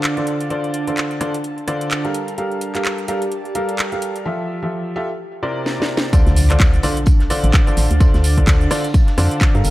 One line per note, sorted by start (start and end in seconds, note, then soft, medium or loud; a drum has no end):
0.00 0.14 D3 medium
0.00 3.00 D4 medium
0.00 0.14 F4 medium
0.00 0.14 A4 medium
0.00 0.14 C5 medium
0.00 0.14 D5 loud
0.00 2.80 F5 medium
0.00 3.00 A5 medium
0.00 clap loud
0.00 closed hi-hat soft
0.17 0.48 D3 medium
0.17 0.48 F4 medium
0.17 0.48 A4 medium
0.17 0.48 C5 medium
0.17 0.48 D5 medium
0.17 closed hi-hat soft
0.27 closed hi-hat medium
0.41 closed hi-hat soft
0.50 0.84 D3 medium
0.50 0.84 F4 medium
0.50 0.84 A4 medium
0.50 0.84 C5 medium
0.50 0.84 D5 medium
0.50 closed hi-hat soft
0.64 closed hi-hat soft
0.74 closed hi-hat medium
0.87 1.18 D3 medium
0.87 1.18 F4 medium
0.87 1.18 A4 medium
0.87 1.18 C5 medium
0.87 1.18 D5 medium
0.87 closed hi-hat medium
0.97 clap loud
0.97 closed hi-hat soft
1.11 closed hi-hat soft
1.21 1.33 D3 medium
1.21 1.33 F4 medium
1.21 1.33 A4 medium
1.21 1.33 C5 medium
1.21 1.33 D5 loud
1.21 cross-stick medium
1.21 closed hi-hat medium
1.34 closed hi-hat medium
1.44 closed hi-hat soft
1.58 closed hi-hat soft
1.68 2.01 D3 medium
1.68 2.01 F4 medium
1.68 2.01 A4 medium
1.68 2.01 C5 medium
1.68 2.01 D5 loud
1.68 cross-stick medium
1.68 closed hi-hat medium
1.81 closed hi-hat medium
1.91 clap loud
1.91 closed hi-hat medium
2.05 2.36 G3 medium
2.05 2.36 G4 medium
2.05 2.36 A4 medium
2.05 2.36 A#4 medium
2.05 2.36 F5 medium
2.05 closed hi-hat soft
2.14 4.25 G4 medium
2.14 closed hi-hat medium
2.28 closed hi-hat medium
2.38 2.72 G3 medium
2.38 2.72 G4 medium
2.38 2.72 A4 medium
2.38 2.72 A#4 medium
2.38 2.72 F5 medium
2.38 closed hi-hat medium
2.52 closed hi-hat soft
2.60 4.25 D5 medium
2.60 closed hi-hat medium
2.75 3.06 G3 medium
2.75 3.06 G4 medium
2.75 3.06 A4 medium
2.75 3.06 A#4 medium
2.75 3.06 F5 medium
2.75 clap soft
2.75 closed hi-hat medium
2.85 clap loud
2.85 closed hi-hat soft
2.98 closed hi-hat soft
3.04 3.20 G3 medium
3.04 3.20 G4 medium
3.04 3.20 A4 medium
3.04 3.20 A#4 medium
3.04 3.20 F5 loud
3.04 4.25 A5 medium
3.04 closed hi-hat medium
3.22 closed hi-hat medium
3.32 closed hi-hat medium
3.45 closed hi-hat soft
3.55 3.89 G3 medium
3.55 3.89 G4 medium
3.55 3.89 A4 medium
3.55 3.89 A#4 medium
3.55 3.89 F5 loud
3.55 closed hi-hat medium
3.69 closed hi-hat medium
3.79 clap loud
3.79 closed hi-hat medium
3.92 4.23 G3 medium
3.92 4.23 G4 medium
3.92 4.23 A4 medium
3.92 4.23 A#4 medium
3.92 4.23 F5 medium
3.92 closed hi-hat soft
4.02 closed hi-hat medium
4.16 closed hi-hat medium
4.26 4.59 F3 medium
4.26 4.59 F4 medium
4.26 4.59 G4 medium
4.26 4.59 A4 medium
4.26 4.59 E5 medium
4.63 4.94 F3 medium
4.63 4.93 F4 medium
4.63 4.93 G4 medium
4.63 4.93 A4 medium
4.63 4.93 E5 medium
4.96 5.08 F4 medium
4.96 5.08 G4 medium
4.96 5.08 A4 medium
4.96 5.08 E5 loud
5.43 5.76 C3 medium
5.43 5.76 E4 medium
5.43 5.76 A#4 medium
5.43 5.76 C5 medium
5.43 5.76 D5 loud
5.66 snare medium
5.80 6.11 C3 medium
5.80 6.11 E4 medium
5.80 6.11 A#4 medium
5.80 6.11 C5 medium
5.80 6.11 D5 medium
5.80 snare medium
5.97 snare loud
6.13 6.47 D3 medium
6.13 9.70 D4 medium
6.13 6.47 F4 medium
6.13 6.47 A4 medium
6.13 6.47 C5 medium
6.13 6.47 D5 medium
6.13 kick loud
6.13 closed hi-hat medium
6.13 tambourine medium
6.13 impact medium
6.13 shaker soft
6.27 6.80 D2 loud
6.27 snare soft
6.27 closed hi-hat soft
6.27 shaker soft
6.36 open hi-hat loud
6.36 tambourine medium
6.36 shaker medium
6.46 6.81 D3 medium
6.46 6.81 F4 medium
6.46 6.81 A4 medium
6.46 6.81 C5 medium
6.46 6.81 D5 medium
6.46 9.70 A5 medium
6.46 closed hi-hat medium
6.50 clap soft
6.50 shaker soft
6.60 kick loud
6.60 snare loud
6.60 clap loud
6.60 closed hi-hat medium
6.60 tambourine medium
6.60 shaker soft
6.74 9.70 F5 medium
6.74 closed hi-hat soft
6.74 shaker soft
6.83 6.95 D3 loud
6.83 6.95 F4 medium
6.83 6.95 A4 medium
6.83 6.95 C5 medium
6.83 6.95 D5 loud
6.83 open hi-hat loud
6.83 tambourine medium
6.83 shaker medium
6.97 closed hi-hat medium
6.97 shaker soft
7.06 kick loud
7.06 closed hi-hat medium
7.06 tambourine medium
7.06 shaker soft
7.20 snare soft
7.20 closed hi-hat soft
7.30 7.64 D3 loud
7.30 7.64 F4 medium
7.30 7.64 A4 medium
7.30 7.64 C5 medium
7.30 7.64 D5 loud
7.30 snare soft
7.30 open hi-hat loud
7.30 tambourine medium
7.30 shaker medium
7.44 7.52 A1 medium
7.44 closed hi-hat medium
7.44 shaker soft
7.53 kick loud
7.53 snare loud
7.53 clap loud
7.53 closed hi-hat medium
7.53 tambourine medium
7.53 shaker soft
7.67 7.98 D3 medium
7.67 7.98 F4 medium
7.67 7.98 A4 medium
7.67 7.98 C5 medium
7.67 7.98 D5 medium
7.67 closed hi-hat soft
7.67 shaker soft
7.77 7.88 A1 loud
7.77 open hi-hat loud
7.77 tambourine medium
7.77 shaker medium
7.91 8.09 D2 medium
7.91 closed hi-hat medium
7.91 shaker soft
8.00 8.34 D3 medium
8.00 8.34 F4 medium
8.00 8.34 A4 medium
8.00 8.34 C5 medium
8.00 8.34 D5 medium
8.00 kick loud
8.00 closed hi-hat medium
8.00 tambourine medium
8.00 shaker soft
8.14 8.68 D2 loud
8.14 snare medium
8.14 closed hi-hat soft
8.14 shaker soft
8.24 open hi-hat loud
8.24 tambourine medium
8.24 shaker medium
8.37 8.68 D3 medium
8.37 8.68 F4 medium
8.37 8.68 A4 medium
8.37 8.68 C5 medium
8.37 8.68 D5 medium
8.37 kick medium
8.37 closed hi-hat medium
8.37 shaker soft
8.47 kick loud
8.47 snare loud
8.47 clap loud
8.47 closed hi-hat medium
8.47 tambourine medium
8.47 shaker soft
8.61 closed hi-hat soft
8.61 shaker soft
8.70 8.83 D3 loud
8.70 8.83 F4 medium
8.70 8.83 A4 medium
8.70 8.83 C5 medium
8.70 8.83 D5 loud
8.70 cross-stick medium
8.70 open hi-hat medium
8.70 open hi-hat loud
8.70 shaker medium
8.84 closed hi-hat medium
8.84 shaker soft
8.94 kick loud
8.94 closed hi-hat medium
8.94 tambourine medium
8.94 shaker soft
9.07 snare soft
9.07 closed hi-hat soft
9.18 9.29 F2 loud
9.18 9.51 D3 loud
9.18 9.51 F4 medium
9.18 9.51 A4 medium
9.18 9.51 C5 medium
9.18 9.52 D5 loud
9.18 cross-stick medium
9.18 open hi-hat loud
9.18 tambourine medium
9.18 shaker medium
9.31 closed hi-hat medium
9.31 shaker soft
9.40 kick loud
9.40 snare loud
9.40 clap loud
9.40 closed hi-hat medium
9.40 tambourine medium
9.40 shaker soft
9.55 9.63 G2 medium
9.55 9.70 G3 medium
9.55 9.70 G4 medium
9.55 9.70 A4 medium
9.55 9.70 A#4 medium
9.55 9.70 F5 medium
9.55 closed hi-hat soft
9.55 shaker soft
9.64 9.70 G1 medium
9.64 9.70 G4 medium
9.64 open hi-hat loud
9.64 tambourine medium
9.64 shaker medium